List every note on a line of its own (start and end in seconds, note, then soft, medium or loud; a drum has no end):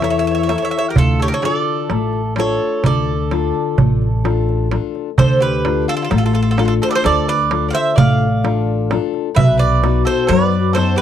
0.00 0.54 E2 medium
0.00 0.47 E3 medium
0.00 0.47 E4 soft
0.00 0.48 A4 soft
0.00 0.09 C#5 medium
0.00 0.48 C#5 medium
0.00 darbuka tek medium
0.04 0.09 E5 medium
0.10 0.17 C#5 soft
0.10 0.18 E5 medium
0.18 0.23 C#5 medium
0.18 0.26 E5 medium
0.24 0.30 C#5 soft
0.24 0.33 E5 medium
0.31 0.37 C#5 medium
0.31 0.41 E5 medium
0.38 0.46 C#5 soft
0.43 0.54 C#5 medium
0.43 0.48 E5 medium
0.49 0.87 E4 soft
0.49 0.87 A4 soft
0.49 0.87 C#5 medium
0.49 0.56 E5 medium
0.49 darbuka tek medium
0.56 0.61 C#5 soft
0.56 0.63 E5 medium
0.62 0.69 C#5 medium
0.62 0.70 E5 medium
0.70 0.76 C#5 medium
0.70 0.77 E5 medium
0.78 0.85 C#5 medium
0.78 0.86 E5 medium
0.89 0.95 G4 medium
0.89 0.97 A#4 medium
0.96 1.29 D2 medium
0.96 1.88 D3 medium
0.96 1.19 F4 medium
0.96 1.20 A4 medium
0.96 darbuka dum medium
1.20 1.30 G4 medium
1.20 1.25 A4 medium
1.20 1.27 C#5 medium
1.28 1.33 A#4 medium
1.32 1.41 A4 medium
1.32 1.44 C#5 medium
1.42 2.19 D4 soft
1.42 2.19 F4 soft
1.42 2.33 A4 medium
1.42 2.19 A4 medium
1.42 2.35 D5 medium
1.42 darbuka tek medium
1.90 2.56 A1 medium
1.90 2.82 A3 medium
1.90 darbuka tek medium
2.13 darbuka tek soft
2.36 3.12 D4 soft
2.36 3.13 F4 soft
2.36 3.13 A4 medium
2.36 2.82 A4 medium
2.36 2.82 C#5 medium
2.36 darbuka tek medium
2.84 3.50 D2 medium
2.84 3.75 D3 medium
2.84 4.69 A4 medium
2.84 4.69 D5 medium
2.84 darbuka tek medium
2.84 darbuka dum medium
3.08 darbuka tek soft
3.31 4.06 D4 soft
3.31 4.07 F4 soft
3.31 4.07 A4 medium
3.31 darbuka tek medium
3.54 darbuka tek soft
3.78 4.76 A1 medium
3.78 4.69 A3 medium
3.78 darbuka dum medium
4.02 darbuka tek soft
4.24 4.70 D4 soft
4.24 4.70 F4 soft
4.24 4.71 A4 medium
4.24 darbuka tek medium
4.49 darbuka tek soft
4.71 5.09 D4 soft
4.71 5.09 F4 soft
4.71 5.10 A4 medium
4.71 darbuka tek medium
4.95 darbuka tek soft
5.18 5.84 D2 medium
5.18 6.09 D3 medium
5.18 5.40 A4 medium
5.18 5.42 C5 medium
5.18 darbuka dum loud
5.40 5.85 G4 medium
5.40 5.85 B4 medium
5.65 6.40 D4 medium
5.65 6.40 F4 soft
5.65 6.40 A4 medium
5.65 darbuka tek medium
5.88 5.95 F4 medium
5.88 5.95 A4 medium
5.96 6.01 F4 medium
5.96 6.03 A4 medium
6.02 6.09 F4 medium
6.02 6.10 A4 medium
6.10 6.77 A1 medium
6.10 7.02 A3 medium
6.10 6.16 F4 soft
6.10 6.17 A4 medium
6.10 darbuka tek medium
6.17 6.24 F4 medium
6.17 6.25 A4 medium
6.26 6.32 F4 soft
6.26 6.33 A4 medium
6.33 6.41 F4 soft
6.33 6.41 A4 medium
6.42 6.49 F4 soft
6.42 6.49 A4 medium
6.51 6.56 F4 medium
6.51 6.57 A4 medium
6.57 7.33 D4 soft
6.57 6.64 F4 soft
6.57 7.33 F4 soft
6.57 6.65 A4 medium
6.57 7.33 A4 medium
6.57 darbuka tek medium
6.65 6.72 F4 medium
6.65 6.73 A4 medium
6.82 6.87 A4 medium
6.82 6.88 C5 medium
6.89 7.03 A4 medium
6.89 6.92 B4 medium
6.89 6.95 D5 medium
6.96 7.05 C5 medium
7.04 7.70 D2 medium
7.04 7.95 D3 medium
7.04 7.26 A4 medium
7.04 7.27 D5 loud
7.04 darbuka tek medium
7.28 7.66 B4 medium
7.28 7.67 D5 medium
7.51 8.25 D4 soft
7.51 8.26 F4 soft
7.51 8.26 A4 medium
7.51 darbuka tek medium
7.69 7.73 D5 medium
7.69 7.74 F5 medium
7.73 7.95 C5 medium
7.73 7.96 E5 medium
7.96 8.95 A1 medium
7.96 8.88 A3 medium
7.96 8.97 D5 medium
7.96 8.98 F5 loud
7.96 darbuka dum loud
8.21 darbuka tek soft
8.44 8.91 D4 soft
8.44 8.91 F4 soft
8.44 8.91 A4 medium
8.44 darbuka tek medium
8.91 9.28 D4 soft
8.91 9.29 F4 soft
8.91 9.29 A4 medium
8.91 darbuka tek medium
9.14 darbuka tek soft
9.35 10.01 B1 medium
9.35 10.27 B2 medium
9.35 9.56 B4 medium
9.35 9.59 E5 loud
9.35 darbuka dum medium
9.58 10.02 B4 medium
9.58 10.03 D5 medium
9.83 10.57 B3 soft
9.83 10.58 D#4 soft
9.83 10.58 F#4 medium
9.83 darbuka tek medium
10.05 10.27 A4 medium
10.05 10.28 C5 medium
10.27 10.94 F#2 loud
10.27 11.02 F#3 medium
10.27 10.71 B4 medium
10.27 10.74 D5 loud
10.27 darbuka tek medium
10.73 11.02 B3 soft
10.73 11.02 D#4 soft
10.73 11.02 F#4 medium
10.73 10.96 A4 medium
10.73 10.97 C5 medium
10.73 darbuka tek medium
10.96 11.02 G4 medium
10.96 11.02 B4 medium